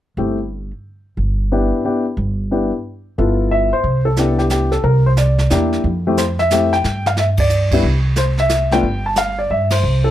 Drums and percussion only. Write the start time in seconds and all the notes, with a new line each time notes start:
3.84 brush sweep, kick
4.17 snare, hi-hat pedal
4.39 snare
4.50 snare, hi-hat pedal
4.72 snare
4.84 brush sweep, kick
5.17 snare, hi-hat pedal
5.38 snare
5.50 snare, hi-hat pedal
5.73 snare
5.84 brush sweep, kick
6.17 snare, hi-hat pedal
6.39 snare
6.51 snare, hi-hat pedal
6.73 snare
6.84 snare
7.06 snare
7.17 snare
7.37 kick, ride
7.49 hi-hat pedal
7.71 kick, crash
7.83 brush sweep, kick
8.16 snare, hi-hat pedal
8.38 snare
8.49 snare, hi-hat pedal
8.71 snare
8.83 brush sweep, kick
9.16 snare, hi-hat pedal
9.70 snare, ride
9.83 brush sweep